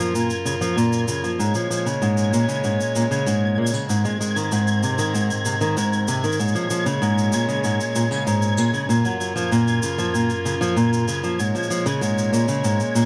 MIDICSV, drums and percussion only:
0, 0, Header, 1, 2, 480
1, 0, Start_track
1, 0, Key_signature, -5, "minor"
1, 0, Tempo, 625000
1, 1069, Time_signature, 4, 2, 24, 8
1, 10026, End_track
2, 0, Start_track
2, 0, Title_t, "Drums"
2, 0, Note_on_c, 9, 69, 45
2, 77, Note_off_c, 9, 69, 0
2, 118, Note_on_c, 9, 69, 46
2, 195, Note_off_c, 9, 69, 0
2, 231, Note_on_c, 9, 69, 34
2, 308, Note_off_c, 9, 69, 0
2, 355, Note_on_c, 9, 69, 70
2, 432, Note_off_c, 9, 69, 0
2, 474, Note_on_c, 9, 69, 40
2, 551, Note_off_c, 9, 69, 0
2, 599, Note_on_c, 9, 69, 46
2, 676, Note_off_c, 9, 69, 0
2, 712, Note_on_c, 9, 69, 36
2, 789, Note_off_c, 9, 69, 0
2, 830, Note_on_c, 9, 69, 73
2, 907, Note_off_c, 9, 69, 0
2, 955, Note_on_c, 9, 69, 40
2, 1031, Note_off_c, 9, 69, 0
2, 1076, Note_on_c, 9, 69, 50
2, 1153, Note_off_c, 9, 69, 0
2, 1188, Note_on_c, 9, 69, 33
2, 1264, Note_off_c, 9, 69, 0
2, 1317, Note_on_c, 9, 69, 65
2, 1394, Note_off_c, 9, 69, 0
2, 1434, Note_on_c, 9, 69, 38
2, 1511, Note_off_c, 9, 69, 0
2, 1552, Note_on_c, 9, 69, 49
2, 1629, Note_off_c, 9, 69, 0
2, 1670, Note_on_c, 9, 69, 39
2, 1747, Note_off_c, 9, 69, 0
2, 1794, Note_on_c, 9, 69, 65
2, 1871, Note_off_c, 9, 69, 0
2, 1911, Note_on_c, 9, 69, 45
2, 1988, Note_off_c, 9, 69, 0
2, 2027, Note_on_c, 9, 69, 46
2, 2104, Note_off_c, 9, 69, 0
2, 2155, Note_on_c, 9, 69, 39
2, 2231, Note_off_c, 9, 69, 0
2, 2272, Note_on_c, 9, 69, 67
2, 2348, Note_off_c, 9, 69, 0
2, 2395, Note_on_c, 9, 69, 41
2, 2472, Note_off_c, 9, 69, 0
2, 2512, Note_on_c, 9, 69, 57
2, 2588, Note_off_c, 9, 69, 0
2, 2817, Note_on_c, 9, 69, 72
2, 2872, Note_off_c, 9, 69, 0
2, 2872, Note_on_c, 9, 69, 43
2, 2948, Note_off_c, 9, 69, 0
2, 2993, Note_on_c, 9, 69, 51
2, 3070, Note_off_c, 9, 69, 0
2, 3111, Note_on_c, 9, 69, 34
2, 3187, Note_off_c, 9, 69, 0
2, 3237, Note_on_c, 9, 69, 67
2, 3313, Note_off_c, 9, 69, 0
2, 3354, Note_on_c, 9, 69, 37
2, 3430, Note_off_c, 9, 69, 0
2, 3471, Note_on_c, 9, 69, 52
2, 3548, Note_off_c, 9, 69, 0
2, 3590, Note_on_c, 9, 69, 32
2, 3667, Note_off_c, 9, 69, 0
2, 3710, Note_on_c, 9, 69, 67
2, 3787, Note_off_c, 9, 69, 0
2, 3829, Note_on_c, 9, 69, 45
2, 3906, Note_off_c, 9, 69, 0
2, 3954, Note_on_c, 9, 69, 46
2, 4030, Note_off_c, 9, 69, 0
2, 4075, Note_on_c, 9, 69, 37
2, 4151, Note_off_c, 9, 69, 0
2, 4190, Note_on_c, 9, 69, 75
2, 4267, Note_off_c, 9, 69, 0
2, 4310, Note_on_c, 9, 69, 46
2, 4386, Note_off_c, 9, 69, 0
2, 4434, Note_on_c, 9, 69, 51
2, 4511, Note_off_c, 9, 69, 0
2, 4554, Note_on_c, 9, 69, 35
2, 4631, Note_off_c, 9, 69, 0
2, 4669, Note_on_c, 9, 69, 69
2, 4746, Note_off_c, 9, 69, 0
2, 4792, Note_on_c, 9, 69, 37
2, 4855, Note_off_c, 9, 69, 0
2, 4855, Note_on_c, 9, 69, 32
2, 4915, Note_off_c, 9, 69, 0
2, 4915, Note_on_c, 9, 69, 47
2, 4976, Note_off_c, 9, 69, 0
2, 4976, Note_on_c, 9, 69, 23
2, 5035, Note_off_c, 9, 69, 0
2, 5035, Note_on_c, 9, 69, 32
2, 5112, Note_off_c, 9, 69, 0
2, 5149, Note_on_c, 9, 69, 69
2, 5226, Note_off_c, 9, 69, 0
2, 5271, Note_on_c, 9, 69, 41
2, 5348, Note_off_c, 9, 69, 0
2, 5395, Note_on_c, 9, 69, 50
2, 5472, Note_off_c, 9, 69, 0
2, 5516, Note_on_c, 9, 69, 34
2, 5593, Note_off_c, 9, 69, 0
2, 5626, Note_on_c, 9, 69, 70
2, 5703, Note_off_c, 9, 69, 0
2, 5754, Note_on_c, 9, 69, 39
2, 5831, Note_off_c, 9, 69, 0
2, 5869, Note_on_c, 9, 69, 45
2, 5946, Note_off_c, 9, 69, 0
2, 5993, Note_on_c, 9, 69, 41
2, 6070, Note_off_c, 9, 69, 0
2, 6110, Note_on_c, 9, 69, 69
2, 6187, Note_off_c, 9, 69, 0
2, 6236, Note_on_c, 9, 69, 40
2, 6313, Note_off_c, 9, 69, 0
2, 6353, Note_on_c, 9, 69, 47
2, 6430, Note_off_c, 9, 69, 0
2, 6467, Note_on_c, 9, 69, 34
2, 6544, Note_off_c, 9, 69, 0
2, 6588, Note_on_c, 9, 69, 71
2, 6665, Note_off_c, 9, 69, 0
2, 6712, Note_on_c, 9, 69, 37
2, 6789, Note_off_c, 9, 69, 0
2, 6836, Note_on_c, 9, 69, 51
2, 6913, Note_off_c, 9, 69, 0
2, 6951, Note_on_c, 9, 69, 32
2, 7028, Note_off_c, 9, 69, 0
2, 7072, Note_on_c, 9, 69, 64
2, 7149, Note_off_c, 9, 69, 0
2, 7196, Note_on_c, 9, 69, 41
2, 7273, Note_off_c, 9, 69, 0
2, 7314, Note_on_c, 9, 69, 43
2, 7390, Note_off_c, 9, 69, 0
2, 7432, Note_on_c, 9, 69, 35
2, 7509, Note_off_c, 9, 69, 0
2, 7548, Note_on_c, 9, 69, 69
2, 7624, Note_off_c, 9, 69, 0
2, 7671, Note_on_c, 9, 69, 41
2, 7748, Note_off_c, 9, 69, 0
2, 7795, Note_on_c, 9, 69, 44
2, 7871, Note_off_c, 9, 69, 0
2, 7909, Note_on_c, 9, 69, 37
2, 7986, Note_off_c, 9, 69, 0
2, 8033, Note_on_c, 9, 69, 69
2, 8109, Note_off_c, 9, 69, 0
2, 8157, Note_on_c, 9, 69, 40
2, 8234, Note_off_c, 9, 69, 0
2, 8272, Note_on_c, 9, 69, 51
2, 8349, Note_off_c, 9, 69, 0
2, 8396, Note_on_c, 9, 69, 37
2, 8473, Note_off_c, 9, 69, 0
2, 8512, Note_on_c, 9, 69, 74
2, 8588, Note_off_c, 9, 69, 0
2, 8632, Note_on_c, 9, 69, 43
2, 8709, Note_off_c, 9, 69, 0
2, 8753, Note_on_c, 9, 69, 45
2, 8830, Note_off_c, 9, 69, 0
2, 8875, Note_on_c, 9, 69, 30
2, 8934, Note_off_c, 9, 69, 0
2, 8934, Note_on_c, 9, 69, 24
2, 8994, Note_off_c, 9, 69, 0
2, 8994, Note_on_c, 9, 69, 65
2, 9055, Note_off_c, 9, 69, 0
2, 9055, Note_on_c, 9, 69, 16
2, 9111, Note_off_c, 9, 69, 0
2, 9111, Note_on_c, 9, 69, 36
2, 9188, Note_off_c, 9, 69, 0
2, 9234, Note_on_c, 9, 69, 43
2, 9311, Note_off_c, 9, 69, 0
2, 9356, Note_on_c, 9, 69, 35
2, 9433, Note_off_c, 9, 69, 0
2, 9474, Note_on_c, 9, 69, 62
2, 9551, Note_off_c, 9, 69, 0
2, 9588, Note_on_c, 9, 69, 46
2, 9665, Note_off_c, 9, 69, 0
2, 9710, Note_on_c, 9, 69, 47
2, 9787, Note_off_c, 9, 69, 0
2, 9831, Note_on_c, 9, 69, 37
2, 9907, Note_off_c, 9, 69, 0
2, 9951, Note_on_c, 9, 69, 69
2, 10026, Note_off_c, 9, 69, 0
2, 10026, End_track
0, 0, End_of_file